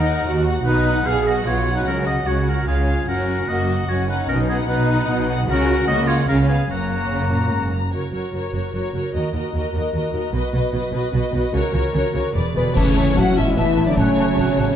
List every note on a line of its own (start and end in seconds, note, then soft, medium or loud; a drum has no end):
0.00 0.21 D#2 medium
0.00 0.26 D#4 medium
0.00 0.45 D#4 medium
0.00 0.45 A#4 medium
0.05 0.45 F#5 soft
0.24 0.60 D#2 medium
0.24 0.61 D#2 medium
0.24 0.65 F#4 medium
0.47 0.66 F#5 medium
0.65 1.01 B1 medium
0.65 1.01 B2 medium
0.65 1.05 D#4 medium
0.65 1.04 D#4 medium
0.65 1.08 B4 medium
0.86 1.24 F#5 medium
1.05 1.41 B1 medium
1.05 1.41 B2 medium
1.05 1.45 G#4 medium
1.05 1.26 G#4 medium
1.05 1.28 F5 medium
1.26 1.46 F#4 medium
1.26 1.47 D#5 medium
1.26 1.65 F#5 soft
1.45 1.81 B1 medium
1.45 1.81 B2 medium
1.45 2.26 F#3 medium
1.45 1.75 F4 medium
1.45 1.76 C#5 medium
1.66 1.83 F#5 soft
1.76 1.86 D#4 medium
1.76 1.86 B4 medium
1.84 2.22 C#2 medium
1.84 2.22 C#3 medium
1.84 1.92 C#4 medium
1.84 2.06 A#4 medium
1.84 2.04 F#5 soft
2.04 2.12 F#4 medium
2.04 2.28 D#5 medium
2.04 2.45 F#5 soft
2.25 2.62 C#2 medium
2.25 2.62 C#3 medium
2.25 2.33 F#4 medium
2.25 2.66 F#4 medium
2.25 2.47 C#5 medium
2.45 2.65 C#4 soft
2.45 2.67 A#4 medium
2.45 2.66 F#5 soft
2.67 3.03 C#2 soft
2.67 3.03 C#3 soft
2.67 3.06 C#4 soft
2.67 2.88 F4 medium
2.67 3.08 G#4 medium
2.67 2.85 F5 soft
2.87 3.07 F5 soft
3.07 3.43 F#1 soft
3.07 3.44 F#2 medium
3.07 3.47 C#4 medium
3.07 3.46 F#4 medium
3.07 3.50 A#4 medium
3.07 3.27 F#5 soft
3.28 3.68 F#5 soft
3.47 3.83 F#1 medium
3.47 3.83 F#2 medium
3.47 3.88 A#3 soft
3.47 3.87 F#4 medium
3.47 3.91 D#5 medium
3.70 4.08 F#5 soft
3.87 4.24 F#1 medium
3.87 4.23 F#2 medium
3.87 4.29 C#4 medium
3.87 4.09 F#4 soft
3.87 4.09 C#5 medium
4.09 4.29 D#4 medium
4.09 4.18 B4 medium
4.09 4.29 F#5 soft
4.28 4.64 B1 medium
4.28 4.64 B2 medium
4.28 4.49 C#4 medium
4.28 4.68 D#4 medium
4.28 4.38 A#4 medium
4.49 4.69 B3 medium
4.49 4.58 G#4 medium
4.49 4.88 F#5 soft
4.67 5.03 B1 medium
4.67 5.04 B2 medium
4.67 5.47 D#4 medium
4.67 5.29 D#4 medium
4.67 5.28 B4 medium
4.90 5.28 F#5 soft
5.08 5.44 B1 medium
5.08 5.44 B2 medium
5.30 5.48 F#5 medium
5.48 5.84 C#2 medium
5.48 5.83 C#3 medium
5.48 5.86 C#4 medium
5.48 5.87 F#4 medium
5.48 5.86 A#4 medium
5.48 5.68 F#5 medium
5.69 6.07 F#5 medium
5.87 6.24 C#2 medium
5.87 6.23 C#3 medium
5.87 6.29 A#3 medium
5.87 6.08 F#4 medium
5.87 6.09 D#5 loud
6.07 6.28 F4 medium
6.07 6.28 C#5 medium
6.07 6.28 F#5 soft
6.27 6.65 C#2 medium
6.27 6.65 C#3 medium
6.27 6.68 C#4 medium
6.27 6.49 C#4 medium
6.27 6.38 A#4 medium
6.27 6.48 F5 soft
6.47 6.58 B3 soft
6.47 6.69 G#4 medium
6.47 6.70 F5 soft
6.69 7.07 F#1 soft
6.69 7.06 F#2 medium
6.69 7.73 A#3 medium
6.69 7.72 C#4 soft
6.69 7.73 F#4 medium
6.69 6.91 A#5 soft
6.92 7.32 A#5 soft
7.11 7.49 F#1 soft
7.11 7.31 C#3 medium
7.31 7.52 A#2 soft
7.31 7.71 A#5 soft
7.52 7.90 F#1 soft
7.52 7.74 G#2 medium
7.73 7.91 F#2 soft
7.73 7.94 A#5 soft
7.92 8.03 F#1 soft
7.92 8.01 F#2 soft
7.92 8.11 F#4 soft
7.92 8.14 A#4 soft
7.92 8.13 C#5 soft
8.12 8.22 F#1 soft
8.12 8.21 F#2 soft
8.12 8.32 F#4 soft
8.12 8.33 A#4 soft
8.12 8.34 C#5 soft
8.33 8.42 F#1 soft
8.33 8.42 F#2 soft
8.33 8.50 F#4 soft
8.33 8.54 A#4 soft
8.33 8.54 C#5 soft
8.51 8.62 F#1 soft
8.51 8.62 F#2 soft
8.51 8.71 F#4 soft
8.51 8.73 A#4 soft
8.56 8.73 C#5 soft
8.72 8.82 F#1 soft
8.72 8.81 F#2 soft
8.72 8.93 F#4 soft
8.72 8.94 A#4 soft
8.72 8.95 C#5 soft
8.94 9.03 F#1 soft
8.94 9.03 F#2 soft
8.94 9.12 F#4 soft
8.94 9.14 A#4 soft
8.94 9.15 C#5 soft
9.13 9.23 D#2 soft
9.13 9.34 F#4 soft
9.13 9.34 A#4 soft
9.13 9.35 D#5 soft
9.34 9.42 D#2 soft
9.34 9.43 D#2 soft
9.34 9.53 F#4 soft
9.34 9.54 A#4 soft
9.34 9.55 D#5 soft
9.53 9.61 D#2 soft
9.53 9.63 D#2 soft
9.53 9.72 F#4 soft
9.53 9.75 A#4 soft
9.58 9.76 D#5 soft
9.73 9.81 D#2 soft
9.73 9.83 D#2 soft
9.73 9.93 F#4 soft
9.73 9.94 A#4 soft
9.77 9.94 D#5 soft
9.92 10.00 D#2 soft
9.92 10.02 D#2 soft
9.92 10.12 F#4 soft
9.92 10.12 A#4 soft
9.92 10.13 D#5 soft
10.13 10.21 D#2 soft
10.13 10.33 F#4 soft
10.13 10.34 A#4 soft
10.13 10.34 D#5 soft
10.32 10.41 B1 soft
10.32 10.40 B2 medium
10.32 10.52 F#4 soft
10.32 10.54 B4 soft
10.36 10.53 D#5 soft
10.53 10.62 B1 soft
10.53 10.61 B2 soft
10.53 10.74 F#4 soft
10.53 10.74 B4 soft
10.53 10.72 D#5 soft
10.73 10.82 B1 soft
10.73 10.81 B2 medium
10.73 10.92 F#4 soft
10.73 10.93 B4 soft
10.73 10.94 D#5 soft
10.92 11.02 B1 medium
10.92 11.00 B2 soft
10.92 11.13 F#4 soft
10.92 11.13 B4 soft
10.92 11.14 D#5 soft
11.13 11.22 B1 soft
11.13 11.21 B2 medium
11.13 11.32 F#4 soft
11.13 11.33 B4 soft
11.13 11.35 D#5 soft
11.32 11.42 B1 medium
11.32 11.40 B2 soft
11.32 11.52 F#4 soft
11.32 11.54 B4 soft
11.36 11.55 D#5 soft
11.53 11.63 C#2 medium
11.53 11.62 C#3 medium
11.53 11.72 F#4 medium
11.53 11.75 A#4 medium
11.53 11.74 C#5 medium
11.73 11.83 C#2 medium
11.73 11.81 C#3 medium
11.73 11.92 F#4 soft
11.73 11.94 C#5 soft
11.77 11.94 A#4 soft
11.93 12.04 C#2 soft
11.93 12.02 C#3 medium
11.93 12.12 F#4 soft
11.93 12.15 A#4 soft
11.93 12.13 C#5 soft
12.14 12.23 C#2 soft
12.14 12.22 C#3 soft
12.14 12.35 F#4 soft
12.14 12.36 A#4 soft
12.14 12.35 C#5 soft
12.34 12.44 E1 soft
12.34 12.43 E2 soft
12.34 12.53 G#4 soft
12.34 12.56 B4 soft
12.34 12.56 D5 soft
12.54 12.64 E1 soft
12.54 12.63 E2 soft
12.54 12.74 B2 medium
12.54 12.74 D3 medium
12.54 12.75 B3 medium
12.54 12.75 G#4 soft
12.54 12.76 B4 medium
12.54 12.77 B4 medium
12.54 12.77 D5 medium
12.75 12.84 A1 medium
12.75 13.17 C#3 medium
12.75 13.19 E3 medium
12.75 13.94 E3 medium
12.75 13.14 A3 medium
12.75 14.76 A3 medium
12.75 13.18 C#4 medium
12.75 13.17 C#5 medium
12.75 12.86 E5 medium
12.75 12.82 A5 medium
12.75 concert bass drum medium
12.75 crash medium
12.75 crash soft
12.97 13.07 E5 medium
12.97 13.03 A5 medium
12.97 snare soft
13.15 13.24 A1 medium
13.15 13.37 F#3 medium
13.15 13.36 A3 medium
13.15 13.56 C#4 medium
13.15 13.37 F#4 medium
13.15 13.38 F#5 medium
13.15 13.37 F#5 medium
13.15 13.23 A5 medium
13.15 concert bass drum medium
13.15 snare medium
13.20 13.29 E5 medium
13.36 13.44 A1 medium
13.36 13.45 E3 medium
13.36 13.58 G#3 medium
13.36 13.58 E4 medium
13.36 13.56 E5 medium
13.36 13.46 E5 medium
13.36 13.47 E5 soft
13.36 13.43 A5 soft
13.55 13.64 A1 soft
13.55 13.87 E3 medium
13.55 13.87 A3 medium
13.55 13.96 B3 medium
13.55 13.87 E5 medium
13.55 13.66 E5 medium
13.55 13.64 A5 medium
13.55 concert bass drum medium
13.55 snare medium
13.59 13.88 E4 medium
13.59 13.68 E5 medium
13.76 13.84 A1 medium
13.76 13.83 A5 medium
13.81 13.89 E5 soft
13.86 13.97 D3 medium
13.86 13.97 F#3 medium
13.86 13.97 D4 medium
13.86 13.92 D5 medium
13.91 13.99 D5 medium
13.95 14.06 A1 medium
13.95 14.76 C#3 medium
13.95 14.76 F#3 medium
13.95 14.36 A3 medium
13.95 14.76 C#4 medium
13.95 14.76 C#5 medium
13.95 14.03 A5 medium
13.95 concert bass drum medium
14.00 14.76 C#5 medium
14.00 14.09 F#5 medium
14.17 14.29 F#5 medium
14.17 14.25 A5 medium
14.17 snare soft
14.37 14.46 A1 medium
14.37 14.75 F#3 medium
14.37 14.49 F#5 medium
14.37 14.45 A5 medium
14.37 concert bass drum medium
14.37 snare medium
14.57 14.65 A1 medium
14.57 14.68 F#5 soft
14.57 14.64 A5 soft